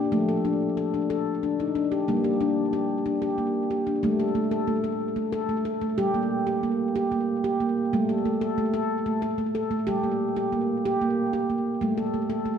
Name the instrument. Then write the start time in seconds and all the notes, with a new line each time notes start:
handpan
Already playing: D4
0.12 F3 A3
0.29 A4
0.45 D4
0.77 A4
0.94 D4
1.10 A4
1.43 D4
1.60 D#4
1.75 D4
1.92 G4
2.08 G3 A#3
2.24 G4
2.41 D4
2.73 G4
3.06 D4
3.22 G4
3.38 A#3
3.71 G4
3.87 D4
4.03 G3 A3
4.20 A4
4.35 A3
4.51 A4
4.67 A3
4.84 A4
5.16 A3
5.33 A4
5.49 A3
5.65 A4
5.82 A3
5.98 G3 G4
6.14 A#3
6.47 G4
6.63 A#3
6.96 G4
7.12 A#3
7.44 G4
7.60 A#3
7.93 G3 A3
8.09 A4
8.26 A3
8.41 A4
8.58 A3
8.74 A4
9.06 A3
9.22 A4
9.38 A3
9.55 A4
9.71 A3
9.87 G3 G4
10.04 A#3
10.36 G4
10.52 A#3
10.85 G4
11.02 A#3
11.33 G4
11.50 A#3
11.81 G3 A3
11.98 A4
12.14 A3
12.30 A4
12.46 A3